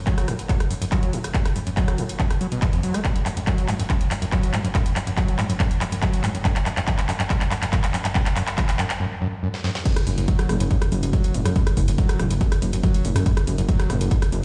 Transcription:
0.07 F#3, kick, clap, closed hi-hat
0.18 cross-stick, closed hi-hat
0.28 G#2, cross-stick, open hi-hat
0.39 closed hi-hat
0.49 F#2, kick, clap, closed hi-hat
0.60 cross-stick, closed hi-hat
0.71 F#2, open hi-hat
0.82 F#2, closed hi-hat
0.92 F#3, kick, clap, closed hi-hat
1.03 closed hi-hat
1.13 G#2, open hi-hat
1.24 cross-stick, closed hi-hat
1.34 F#2, kick, clap, closed hi-hat
1.45 cross-stick, closed hi-hat
1.56 F#2, open hi-hat
1.67 F#2, closed hi-hat
1.77 F#3, kick, clap, closed hi-hat
1.88 cross-stick, closed hi-hat
1.98 G#2, open hi-hat
2.09 closed hi-hat
2.20 F#2, kick, clap, closed hi-hat
2.31 cross-stick, closed hi-hat
2.41 F#3, open hi-hat
2.52 B2, closed hi-hat
2.62 F2, kick, clap, closed hi-hat
2.73 F2, closed hi-hat
2.83 F#3, open hi-hat
2.94 A3, cross-stick, closed hi-hat
3.05 F#2, kick, clap, closed hi-hat
3.16 closed hi-hat
3.26 F#2, clap, open hi-hat
3.37 F#2, closed hi-hat
3.47 F#3, kick, clap, closed hi-hat
3.58 closed hi-hat
3.68 G#2, clap, open hi-hat
3.79 F#2, closed hi-hat
3.90 F#2, kick, clap, closed hi-hat
4.01 closed hi-hat
4.11 F#2, clap, open hi-hat
4.22 F#2, closed hi-hat
4.32 F#3, kick, clap, closed hi-hat
4.43 closed hi-hat
4.54 G#2, clap, open hi-hat
4.64 F#2, closed hi-hat
4.75 F#2, kick, clap, closed hi-hat
4.86 closed hi-hat
4.96 F#2, clap, open hi-hat
5.07 F#2, closed hi-hat
5.17 F#3, kick, clap, closed hi-hat
5.28 closed hi-hat
5.39 G#2, clap, open hi-hat
5.50 F#2, closed hi-hat
5.60 F#2, kick, clap, closed hi-hat
5.71 closed hi-hat
5.81 F#2, clap, open hi-hat
5.92 F#2, closed hi-hat
6.02 F#3, kick, clap, closed hi-hat
6.13 closed hi-hat
6.24 G#2, clap, open hi-hat
6.35 F#2, closed hi-hat
6.45 F#2, kick, clap, closed hi-hat
6.56 clap, closed hi-hat
6.66 F#2, clap, open hi-hat
6.77 F#2, clap, closed hi-hat
6.87 F#2, kick, clap, closed hi-hat
6.99 clap, closed hi-hat
7.09 F#2, clap, open hi-hat
7.20 F#2, clap, closed hi-hat
7.30 F#2, kick, clap, closed hi-hat
7.41 clap, closed hi-hat
7.51 F#2, clap, open hi-hat
7.62 F#2, clap, closed hi-hat
7.73 F#2, kick, clap, closed hi-hat
7.84 clap, closed hi-hat
7.94 F#2, clap, open hi-hat
8.05 F#2, clap, closed hi-hat
8.15 F#2, kick, clap, closed hi-hat
8.26 clap, closed hi-hat
8.36 F#2, clap, open hi-hat
8.47 clap, closed hi-hat
8.58 F#2, kick, clap, closed hi-hat
8.69 clap, closed hi-hat
8.79 F#2, clap, open hi-hat
8.90 clap, closed hi-hat
9.00 F#2
9.22 F#2
9.43 F#2
9.54 snare
9.64 F#2, snare
9.75 snare
9.85 F#2, kick, closed hi-hat, crash
9.96 cross-stick, closed hi-hat
10.07 F#1 F#2, open hi-hat
10.18 F#1 F#2, closed hi-hat
10.28 F#3, kick, closed hi-hat
10.39 cross-stick, closed hi-hat
10.49 F#1 G#2, cross-stick, open hi-hat
10.60 F#1 F#2, closed hi-hat
10.71 F#2, kick, closed hi-hat
10.82 cross-stick, closed hi-hat
10.92 F#1 F#2, open hi-hat
11.03 F#1 F#2, closed hi-hat
11.13 F#3, kick, closed hi-hat
11.24 closed hi-hat
11.34 F#1 G#2, open hi-hat
11.45 F#2, cross-stick, closed hi-hat
11.56 F#2, kick, closed hi-hat
11.67 cross-stick, closed hi-hat
11.77 F#1 F#2, kick, open hi-hat
11.88 F#1 F#2, closed hi-hat
11.98 F#3, kick, closed hi-hat
12.09 cross-stick, closed hi-hat
12.19 F#1 G#2, cross-stick, open hi-hat
12.30 F#1 F#2, closed hi-hat
12.41 F#2, kick, closed hi-hat
12.52 cross-stick, closed hi-hat
12.62 F#1 F#2, open hi-hat
12.73 F#1 F#2, closed hi-hat
12.83 F#3, kick, closed hi-hat
12.94 closed hi-hat
13.05 F#1 G#2, open hi-hat
13.16 F#2, cross-stick, closed hi-hat
13.26 F#2, kick, closed hi-hat
13.37 cross-stick, closed hi-hat
13.47 F#1 F#2, open hi-hat
13.58 F#1 F#2, closed hi-hat
13.69 F#3, kick, closed hi-hat
13.80 cross-stick, closed hi-hat
13.90 F#1 G#2, cross-stick, open hi-hat
14.01 F#1 F#2, closed hi-hat
14.11 F#2, kick, closed hi-hat
14.22 cross-stick, closed hi-hat
14.32 F#1 F#2, open hi-hat

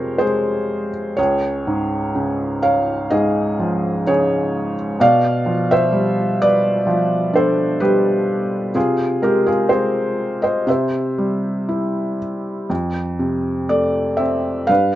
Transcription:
Already playing: F2 C3 G#3 F4 G#4 A#4 C5 C#5
0.18 G#3 G#4 C5
1.17 C#2 G#4 C#5
1.67 G#2
2.15 C#3
2.63 C#5 F5
3.10 G#2 G#4 D#5
3.59 F3
4.07 C#3 G#4 C#5
5.00 B2 D5 F5
5.46 F3
5.71 C5 E5
5.92 G3
6.42 B4 D5
6.87 F3
7.33 D4 A4 C5
7.80 G3 G4 B4
8.75 C3 F4 G#4
9.22 G#3 G4 A#4
9.46 F4 G#4
9.69 C4 G#4 C5
10.42 C5 D#5
10.67 C3 C5 E5
11.18 G3
11.69 E4
12.70 F2
13.19 C3
13.69 A3 D5
14.17 C4 E5
14.67 G2 B4 F5

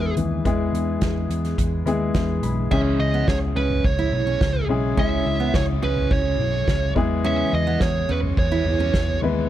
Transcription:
Already playing: E2 E3 G#3 B3 E4 G#4 B4
0.17 D#2 E3, closed hi-hat, floor tom
0.45 E2 G#3 B3 E4 G#4, kick, closed hi-hat
0.73 E2, closed hi-hat
1.01 E2, kick, snare, closed hi-hat
1.29 E2, closed hi-hat
1.45 snare, closed hi-hat
1.58 E2, kick, closed hi-hat
1.86 D#2 G#3 B3 E4 G#4, closed hi-hat
2.15 E2 E5, kick, snare, closed hi-hat
2.43 B1 B5, closed hi-hat, floor tom
2.71 C#2 C#3 G#3 C#4 E4 G#4 E5, kick, crash
2.99 C#2 D#5, ride
3.14 B3, ride
3.28 C#2 C#5, kick, snare, ride
3.55 C#2 C#4 B4, ride
3.70 floor tom
3.84 C#2 C#5, kick, ride
3.99 E4
4.12 B1, floor tom, ride
4.27 C#4
4.41 C#2, kick, snare, ride
4.55 floor tom
4.69 B1 G#3 C#4 E4 G#4, ride
4.97 C#2 C#3 F#3 G#3 C#4 E4 G#4 E5, kick, ride
5.26 C#2, ride
5.40 B3
5.53 C#2 C#5, kick, snare, ride
5.83 C#2 C#4 B4, ride
5.96 floor tom, ride
6.11 C#2 C#5, kick, ride
6.39 B1, floor tom, ride
6.68 C#2, kick, snare, ride
6.95 E2 E3 G#3 B3 E4 G#4, kick, crash
7.24 C#4 E5, ride
7.53 E2 D#5, ride
7.67 B3, ride
7.80 E2 C#5, kick, snare, ride
8.09 E2 C#4 B4, ride
8.23 floor tom, ride
8.37 E2 C#5, kick, ride
8.52 E4
8.65 E2, floor tom, ride
8.80 C#4
8.94 E2, kick, snare, ride
9.08 floor tom
9.22 D#2 E3 G#3 B3 E4 B4, ride

